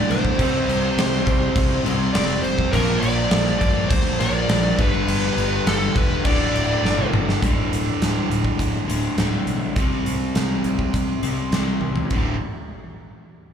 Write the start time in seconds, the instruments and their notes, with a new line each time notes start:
Already playing: distorted electric guitar D2 A2 D3, overdriven electric guitar D2 A2 D3, lead electric guitar D5
0.10 picked electric bass B1, lead electric guitar C5, crash
0.25 kick
0.37 picked electric bass C2, distorted electric guitar C3 G3 C4, overdriven electric guitar C3 G3 C4, kick, crash
0.68 picked electric bass C2, crash
0.97 picked electric bass C2, snare, crash
1.14 snare
1.25 picked electric bass C2, distorted electric guitar C3 G3 C4, kick, crash
1.56 picked electric bass C2, kick, crash
1.86 picked electric bass C2, overdriven electric guitar C3 G3 C4, crash
2.14 picked electric bass F1, overdriven electric guitar C3 G3, lead electric guitar D5, snare, crash
2.18 overdriven electric guitar C4
2.43 picked electric bass F1, lead electric guitar C5, crash
2.59 kick
2.72 picked electric bass A#1, distorted electric guitar A#2 F3 A#3, overdriven electric guitar A#2 F3 A#3, lead electric guitar A#4, kick, crash
3.00 picked electric bass A#1, lead electric guitar D5, crash
3.31 picked electric bass A#1, snare, crash
3.47 snare
3.59 picked electric bass G1, distorted electric guitar F3 A#3, lead electric guitar D5, kick, crash
3.64 distorted electric guitar A#2
3.89 picked electric bass D2, lead electric guitar C5, kick, crash
4.20 picked electric bass A#1, overdriven electric guitar A#2 F3 A#3, lead electric guitar D5, crash
4.49 picked electric bass A#1, overdriven electric guitar A#2 F3 A#3, snare, crash
4.77 picked electric bass G1, distorted electric guitar G2 D3 G3, overdriven electric guitar G2 D3 G3, lead electric guitar B4, kick, crash
5.07 picked electric bass G1, crash
5.37 picked electric bass G1, crash
5.66 picked electric bass G1, distorted electric guitar G2 D3 G3, lead electric guitar A4, snare, crash
5.96 picked electric bass E1, lead electric guitar B4, kick, crash
6.23 picked electric bass D1, distorted electric guitar D2 A2 D3, overdriven electric guitar D2 A2 D3, lead electric guitar D5, kick, crash
6.54 picked electric bass D1, crash
6.83 picked electric bass G1, snare
6.98 mid tom
7.12 picked electric bass G1, distorted electric guitar D2 A2 D3, mid tom
7.29 snare
7.41 picked electric bass D1, overdriven electric guitar D2 A2 D3, kick, closed hi-hat
7.71 picked electric bass D1, closed hi-hat
8.00 picked electric bass D1, snare, closed hi-hat
8.30 picked electric bass D1, closed hi-hat
8.44 kick
8.59 picked electric bass D1, kick, closed hi-hat
8.88 picked electric bass D1, overdriven electric guitar D2 A2 D3, closed hi-hat
9.17 picked electric bass D1, overdriven electric guitar D2 A2 D3, snare, closed hi-hat
9.47 picked electric bass B1, closed hi-hat
9.76 picked electric bass C2, overdriven electric guitar C3 G3 C4, kick, closed hi-hat
10.06 picked electric bass C2, closed hi-hat
10.35 picked electric bass C2, snare, closed hi-hat
10.64 picked electric bass C2, closed hi-hat
10.79 kick
10.94 picked electric bass C2, kick, closed hi-hat
11.23 picked electric bass C2, overdriven electric guitar C3 G3 C4, closed hi-hat
11.52 picked electric bass C2, overdriven electric guitar C3 G3, snare, closed hi-hat
11.56 overdriven electric guitar C4
11.81 picked electric bass C2, high tom
11.96 floor tom
12.10 picked electric bass D1, overdriven electric guitar D2 A2 D3, kick, crash